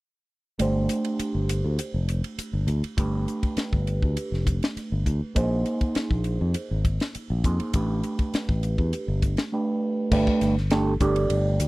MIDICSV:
0, 0, Header, 1, 5, 480
1, 0, Start_track
1, 0, Tempo, 595238
1, 481, Time_signature, 4, 2, 24, 8
1, 9417, End_track
2, 0, Start_track
2, 0, Title_t, "Reed electric piano"
2, 0, Program_c, 0, 4
2, 473, Note_on_c, 0, 57, 55
2, 480, Note_on_c, 0, 62, 53
2, 489, Note_on_c, 0, 67, 49
2, 497, Note_on_c, 0, 72, 58
2, 2366, Note_off_c, 0, 57, 0
2, 2369, Note_off_c, 0, 62, 0
2, 2373, Note_off_c, 0, 67, 0
2, 2378, Note_off_c, 0, 72, 0
2, 2395, Note_on_c, 0, 57, 59
2, 2400, Note_on_c, 0, 62, 50
2, 2410, Note_on_c, 0, 67, 56
2, 2415, Note_on_c, 0, 71, 63
2, 4286, Note_off_c, 0, 57, 0
2, 4289, Note_off_c, 0, 62, 0
2, 4294, Note_off_c, 0, 67, 0
2, 4297, Note_off_c, 0, 71, 0
2, 4313, Note_on_c, 0, 58, 54
2, 4320, Note_on_c, 0, 63, 58
2, 4327, Note_on_c, 0, 68, 58
2, 4334, Note_on_c, 0, 72, 67
2, 5965, Note_off_c, 0, 58, 0
2, 5969, Note_off_c, 0, 63, 0
2, 5972, Note_off_c, 0, 68, 0
2, 5976, Note_off_c, 0, 72, 0
2, 6001, Note_on_c, 0, 58, 42
2, 6005, Note_on_c, 0, 63, 41
2, 6012, Note_on_c, 0, 68, 40
2, 6013, Note_on_c, 0, 72, 50
2, 6235, Note_on_c, 0, 57, 61
2, 6242, Note_off_c, 0, 58, 0
2, 6243, Note_on_c, 0, 62, 53
2, 6244, Note_off_c, 0, 63, 0
2, 6247, Note_off_c, 0, 68, 0
2, 6247, Note_off_c, 0, 72, 0
2, 6252, Note_on_c, 0, 67, 55
2, 6254, Note_on_c, 0, 71, 61
2, 7649, Note_off_c, 0, 57, 0
2, 7652, Note_off_c, 0, 62, 0
2, 7657, Note_off_c, 0, 67, 0
2, 7658, Note_off_c, 0, 71, 0
2, 7677, Note_on_c, 0, 57, 47
2, 7684, Note_on_c, 0, 62, 42
2, 7690, Note_on_c, 0, 67, 45
2, 7691, Note_on_c, 0, 71, 52
2, 8150, Note_off_c, 0, 57, 0
2, 8152, Note_off_c, 0, 62, 0
2, 8159, Note_off_c, 0, 67, 0
2, 8160, Note_on_c, 0, 57, 86
2, 8162, Note_off_c, 0, 71, 0
2, 8162, Note_on_c, 0, 62, 76
2, 8168, Note_on_c, 0, 67, 80
2, 8172, Note_on_c, 0, 71, 90
2, 8497, Note_off_c, 0, 57, 0
2, 8498, Note_off_c, 0, 62, 0
2, 8501, Note_off_c, 0, 67, 0
2, 8503, Note_off_c, 0, 71, 0
2, 8637, Note_on_c, 0, 57, 83
2, 8641, Note_on_c, 0, 62, 70
2, 8643, Note_on_c, 0, 67, 76
2, 8647, Note_on_c, 0, 69, 89
2, 8807, Note_off_c, 0, 57, 0
2, 8809, Note_off_c, 0, 62, 0
2, 8810, Note_off_c, 0, 67, 0
2, 8812, Note_off_c, 0, 69, 0
2, 8875, Note_on_c, 0, 57, 75
2, 8876, Note_on_c, 0, 62, 69
2, 8882, Note_on_c, 0, 67, 66
2, 8886, Note_on_c, 0, 74, 77
2, 9417, Note_off_c, 0, 57, 0
2, 9417, Note_off_c, 0, 62, 0
2, 9417, Note_off_c, 0, 67, 0
2, 9417, Note_off_c, 0, 74, 0
2, 9417, End_track
3, 0, Start_track
3, 0, Title_t, "Fingered electric bass"
3, 0, Program_c, 1, 33
3, 482, Note_on_c, 1, 31, 68
3, 699, Note_off_c, 1, 31, 0
3, 1086, Note_on_c, 1, 31, 66
3, 1304, Note_off_c, 1, 31, 0
3, 1326, Note_on_c, 1, 38, 65
3, 1431, Note_off_c, 1, 38, 0
3, 1566, Note_on_c, 1, 29, 71
3, 1784, Note_off_c, 1, 29, 0
3, 2043, Note_on_c, 1, 31, 74
3, 2149, Note_off_c, 1, 31, 0
3, 2153, Note_on_c, 1, 38, 76
3, 2270, Note_off_c, 1, 38, 0
3, 2401, Note_on_c, 1, 31, 79
3, 2619, Note_off_c, 1, 31, 0
3, 3003, Note_on_c, 1, 31, 66
3, 3222, Note_off_c, 1, 31, 0
3, 3246, Note_on_c, 1, 38, 67
3, 3351, Note_off_c, 1, 38, 0
3, 3483, Note_on_c, 1, 29, 71
3, 3702, Note_off_c, 1, 29, 0
3, 3968, Note_on_c, 1, 31, 74
3, 4072, Note_off_c, 1, 31, 0
3, 4079, Note_on_c, 1, 38, 76
3, 4193, Note_off_c, 1, 38, 0
3, 4320, Note_on_c, 1, 34, 77
3, 4539, Note_off_c, 1, 34, 0
3, 4922, Note_on_c, 1, 34, 67
3, 5142, Note_off_c, 1, 34, 0
3, 5169, Note_on_c, 1, 41, 77
3, 5273, Note_off_c, 1, 41, 0
3, 5411, Note_on_c, 1, 32, 73
3, 5627, Note_off_c, 1, 32, 0
3, 5888, Note_on_c, 1, 34, 73
3, 5993, Note_off_c, 1, 34, 0
3, 6001, Note_on_c, 1, 41, 78
3, 6114, Note_off_c, 1, 41, 0
3, 6240, Note_on_c, 1, 33, 77
3, 6459, Note_off_c, 1, 33, 0
3, 6845, Note_on_c, 1, 33, 67
3, 7063, Note_off_c, 1, 33, 0
3, 7084, Note_on_c, 1, 40, 73
3, 7190, Note_off_c, 1, 40, 0
3, 7323, Note_on_c, 1, 31, 70
3, 7542, Note_off_c, 1, 31, 0
3, 8155, Note_on_c, 1, 31, 91
3, 8270, Note_off_c, 1, 31, 0
3, 8398, Note_on_c, 1, 31, 74
3, 8845, Note_off_c, 1, 31, 0
3, 8873, Note_on_c, 1, 31, 88
3, 9093, Note_off_c, 1, 31, 0
3, 9110, Note_on_c, 1, 31, 88
3, 9331, Note_off_c, 1, 31, 0
3, 9350, Note_on_c, 1, 38, 84
3, 9417, Note_off_c, 1, 38, 0
3, 9417, End_track
4, 0, Start_track
4, 0, Title_t, "Muted fingered electric bass strokes"
4, 962, Note_on_c, 9, 29, 27
4, 1043, Note_off_c, 9, 29, 0
4, 1921, Note_on_c, 9, 29, 31
4, 2002, Note_off_c, 9, 29, 0
4, 2281, Note_on_c, 9, 29, 29
4, 2362, Note_off_c, 9, 29, 0
4, 2875, Note_on_c, 9, 29, 31
4, 2956, Note_off_c, 9, 29, 0
4, 3842, Note_on_c, 9, 29, 28
4, 3923, Note_off_c, 9, 29, 0
4, 4209, Note_on_c, 9, 29, 29
4, 4290, Note_off_c, 9, 29, 0
4, 4805, Note_on_c, 9, 29, 31
4, 4885, Note_off_c, 9, 29, 0
4, 5768, Note_on_c, 9, 29, 29
4, 5849, Note_off_c, 9, 29, 0
4, 6134, Note_on_c, 9, 29, 31
4, 6214, Note_off_c, 9, 29, 0
4, 6724, Note_on_c, 9, 29, 31
4, 6804, Note_off_c, 9, 29, 0
4, 9417, End_track
5, 0, Start_track
5, 0, Title_t, "Drums"
5, 479, Note_on_c, 9, 44, 70
5, 479, Note_on_c, 9, 51, 64
5, 559, Note_off_c, 9, 44, 0
5, 559, Note_off_c, 9, 51, 0
5, 717, Note_on_c, 9, 44, 66
5, 717, Note_on_c, 9, 51, 50
5, 798, Note_off_c, 9, 44, 0
5, 798, Note_off_c, 9, 51, 0
5, 843, Note_on_c, 9, 51, 48
5, 924, Note_off_c, 9, 51, 0
5, 963, Note_on_c, 9, 44, 64
5, 963, Note_on_c, 9, 51, 64
5, 1043, Note_off_c, 9, 44, 0
5, 1043, Note_off_c, 9, 51, 0
5, 1203, Note_on_c, 9, 44, 66
5, 1203, Note_on_c, 9, 51, 56
5, 1284, Note_off_c, 9, 44, 0
5, 1284, Note_off_c, 9, 51, 0
5, 1440, Note_on_c, 9, 44, 69
5, 1440, Note_on_c, 9, 51, 65
5, 1521, Note_off_c, 9, 44, 0
5, 1521, Note_off_c, 9, 51, 0
5, 1682, Note_on_c, 9, 44, 63
5, 1682, Note_on_c, 9, 51, 45
5, 1762, Note_off_c, 9, 44, 0
5, 1762, Note_off_c, 9, 51, 0
5, 1806, Note_on_c, 9, 51, 49
5, 1887, Note_off_c, 9, 51, 0
5, 1924, Note_on_c, 9, 44, 65
5, 1924, Note_on_c, 9, 51, 64
5, 2004, Note_off_c, 9, 44, 0
5, 2004, Note_off_c, 9, 51, 0
5, 2158, Note_on_c, 9, 44, 56
5, 2158, Note_on_c, 9, 51, 46
5, 2238, Note_off_c, 9, 44, 0
5, 2238, Note_off_c, 9, 51, 0
5, 2288, Note_on_c, 9, 51, 47
5, 2369, Note_off_c, 9, 51, 0
5, 2401, Note_on_c, 9, 36, 96
5, 2402, Note_on_c, 9, 44, 71
5, 2402, Note_on_c, 9, 51, 72
5, 2482, Note_off_c, 9, 36, 0
5, 2482, Note_off_c, 9, 44, 0
5, 2482, Note_off_c, 9, 51, 0
5, 2645, Note_on_c, 9, 44, 67
5, 2645, Note_on_c, 9, 51, 45
5, 2725, Note_off_c, 9, 44, 0
5, 2725, Note_off_c, 9, 51, 0
5, 2765, Note_on_c, 9, 36, 59
5, 2765, Note_on_c, 9, 51, 49
5, 2846, Note_off_c, 9, 36, 0
5, 2846, Note_off_c, 9, 51, 0
5, 2876, Note_on_c, 9, 44, 65
5, 2876, Note_on_c, 9, 51, 65
5, 2886, Note_on_c, 9, 38, 80
5, 2957, Note_off_c, 9, 44, 0
5, 2957, Note_off_c, 9, 51, 0
5, 2967, Note_off_c, 9, 38, 0
5, 3005, Note_on_c, 9, 36, 72
5, 3086, Note_off_c, 9, 36, 0
5, 3122, Note_on_c, 9, 44, 71
5, 3122, Note_on_c, 9, 51, 48
5, 3203, Note_off_c, 9, 44, 0
5, 3203, Note_off_c, 9, 51, 0
5, 3245, Note_on_c, 9, 36, 58
5, 3326, Note_off_c, 9, 36, 0
5, 3360, Note_on_c, 9, 44, 73
5, 3360, Note_on_c, 9, 51, 66
5, 3441, Note_off_c, 9, 44, 0
5, 3441, Note_off_c, 9, 51, 0
5, 3498, Note_on_c, 9, 38, 24
5, 3579, Note_off_c, 9, 38, 0
5, 3602, Note_on_c, 9, 36, 63
5, 3604, Note_on_c, 9, 44, 68
5, 3604, Note_on_c, 9, 51, 49
5, 3683, Note_off_c, 9, 36, 0
5, 3685, Note_off_c, 9, 44, 0
5, 3685, Note_off_c, 9, 51, 0
5, 3731, Note_on_c, 9, 51, 49
5, 3740, Note_on_c, 9, 38, 89
5, 3811, Note_off_c, 9, 51, 0
5, 3821, Note_off_c, 9, 38, 0
5, 3846, Note_on_c, 9, 44, 66
5, 3846, Note_on_c, 9, 51, 64
5, 3856, Note_on_c, 9, 38, 24
5, 3927, Note_off_c, 9, 44, 0
5, 3927, Note_off_c, 9, 51, 0
5, 3937, Note_off_c, 9, 38, 0
5, 4082, Note_on_c, 9, 36, 58
5, 4083, Note_on_c, 9, 44, 61
5, 4083, Note_on_c, 9, 51, 43
5, 4162, Note_off_c, 9, 36, 0
5, 4164, Note_off_c, 9, 44, 0
5, 4164, Note_off_c, 9, 51, 0
5, 4321, Note_on_c, 9, 44, 73
5, 4321, Note_on_c, 9, 51, 71
5, 4322, Note_on_c, 9, 36, 91
5, 4402, Note_off_c, 9, 44, 0
5, 4402, Note_off_c, 9, 51, 0
5, 4403, Note_off_c, 9, 36, 0
5, 4561, Note_on_c, 9, 44, 70
5, 4561, Note_on_c, 9, 51, 51
5, 4642, Note_off_c, 9, 44, 0
5, 4642, Note_off_c, 9, 51, 0
5, 4685, Note_on_c, 9, 51, 45
5, 4686, Note_on_c, 9, 36, 62
5, 4765, Note_off_c, 9, 51, 0
5, 4766, Note_off_c, 9, 36, 0
5, 4799, Note_on_c, 9, 44, 69
5, 4799, Note_on_c, 9, 51, 62
5, 4808, Note_on_c, 9, 38, 83
5, 4879, Note_off_c, 9, 44, 0
5, 4879, Note_off_c, 9, 51, 0
5, 4889, Note_off_c, 9, 38, 0
5, 4924, Note_on_c, 9, 36, 68
5, 5004, Note_off_c, 9, 36, 0
5, 5033, Note_on_c, 9, 44, 70
5, 5033, Note_on_c, 9, 51, 53
5, 5113, Note_off_c, 9, 44, 0
5, 5113, Note_off_c, 9, 51, 0
5, 5276, Note_on_c, 9, 44, 76
5, 5276, Note_on_c, 9, 51, 69
5, 5356, Note_off_c, 9, 44, 0
5, 5356, Note_off_c, 9, 51, 0
5, 5521, Note_on_c, 9, 44, 69
5, 5521, Note_on_c, 9, 51, 48
5, 5522, Note_on_c, 9, 36, 70
5, 5601, Note_off_c, 9, 44, 0
5, 5601, Note_off_c, 9, 51, 0
5, 5602, Note_off_c, 9, 36, 0
5, 5646, Note_on_c, 9, 51, 52
5, 5655, Note_on_c, 9, 38, 81
5, 5726, Note_off_c, 9, 51, 0
5, 5736, Note_off_c, 9, 38, 0
5, 5763, Note_on_c, 9, 44, 63
5, 5763, Note_on_c, 9, 51, 69
5, 5843, Note_off_c, 9, 44, 0
5, 5843, Note_off_c, 9, 51, 0
5, 6000, Note_on_c, 9, 44, 64
5, 6000, Note_on_c, 9, 51, 48
5, 6002, Note_on_c, 9, 36, 60
5, 6080, Note_off_c, 9, 44, 0
5, 6080, Note_off_c, 9, 51, 0
5, 6083, Note_off_c, 9, 36, 0
5, 6126, Note_on_c, 9, 51, 55
5, 6207, Note_off_c, 9, 51, 0
5, 6237, Note_on_c, 9, 44, 79
5, 6237, Note_on_c, 9, 51, 76
5, 6241, Note_on_c, 9, 36, 94
5, 6318, Note_off_c, 9, 44, 0
5, 6318, Note_off_c, 9, 51, 0
5, 6322, Note_off_c, 9, 36, 0
5, 6478, Note_on_c, 9, 44, 69
5, 6478, Note_on_c, 9, 51, 55
5, 6559, Note_off_c, 9, 44, 0
5, 6559, Note_off_c, 9, 51, 0
5, 6602, Note_on_c, 9, 51, 54
5, 6604, Note_on_c, 9, 36, 67
5, 6683, Note_off_c, 9, 51, 0
5, 6685, Note_off_c, 9, 36, 0
5, 6722, Note_on_c, 9, 44, 65
5, 6722, Note_on_c, 9, 51, 64
5, 6732, Note_on_c, 9, 38, 86
5, 6803, Note_off_c, 9, 44, 0
5, 6803, Note_off_c, 9, 51, 0
5, 6813, Note_off_c, 9, 38, 0
5, 6845, Note_on_c, 9, 36, 71
5, 6925, Note_off_c, 9, 36, 0
5, 6959, Note_on_c, 9, 44, 76
5, 6959, Note_on_c, 9, 51, 47
5, 7039, Note_off_c, 9, 44, 0
5, 7039, Note_off_c, 9, 51, 0
5, 7083, Note_on_c, 9, 36, 53
5, 7163, Note_off_c, 9, 36, 0
5, 7200, Note_on_c, 9, 44, 68
5, 7200, Note_on_c, 9, 51, 62
5, 7280, Note_off_c, 9, 44, 0
5, 7280, Note_off_c, 9, 51, 0
5, 7437, Note_on_c, 9, 44, 70
5, 7437, Note_on_c, 9, 51, 48
5, 7439, Note_on_c, 9, 36, 63
5, 7518, Note_off_c, 9, 44, 0
5, 7518, Note_off_c, 9, 51, 0
5, 7519, Note_off_c, 9, 36, 0
5, 7557, Note_on_c, 9, 51, 46
5, 7566, Note_on_c, 9, 38, 88
5, 7637, Note_off_c, 9, 51, 0
5, 7647, Note_off_c, 9, 38, 0
5, 8158, Note_on_c, 9, 36, 109
5, 8158, Note_on_c, 9, 49, 94
5, 8239, Note_off_c, 9, 36, 0
5, 8239, Note_off_c, 9, 49, 0
5, 8283, Note_on_c, 9, 36, 84
5, 8363, Note_off_c, 9, 36, 0
5, 8397, Note_on_c, 9, 44, 83
5, 8397, Note_on_c, 9, 51, 60
5, 8406, Note_on_c, 9, 38, 29
5, 8477, Note_off_c, 9, 44, 0
5, 8477, Note_off_c, 9, 51, 0
5, 8487, Note_off_c, 9, 38, 0
5, 8530, Note_on_c, 9, 38, 31
5, 8611, Note_off_c, 9, 38, 0
5, 8632, Note_on_c, 9, 51, 69
5, 8641, Note_on_c, 9, 38, 102
5, 8712, Note_off_c, 9, 51, 0
5, 8722, Note_off_c, 9, 38, 0
5, 8873, Note_on_c, 9, 44, 84
5, 8873, Note_on_c, 9, 51, 60
5, 8875, Note_on_c, 9, 36, 83
5, 8954, Note_off_c, 9, 44, 0
5, 8954, Note_off_c, 9, 51, 0
5, 8956, Note_off_c, 9, 36, 0
5, 8998, Note_on_c, 9, 51, 65
5, 9079, Note_off_c, 9, 51, 0
5, 9111, Note_on_c, 9, 51, 82
5, 9192, Note_off_c, 9, 51, 0
5, 9352, Note_on_c, 9, 44, 79
5, 9352, Note_on_c, 9, 51, 62
5, 9417, Note_off_c, 9, 44, 0
5, 9417, Note_off_c, 9, 51, 0
5, 9417, End_track
0, 0, End_of_file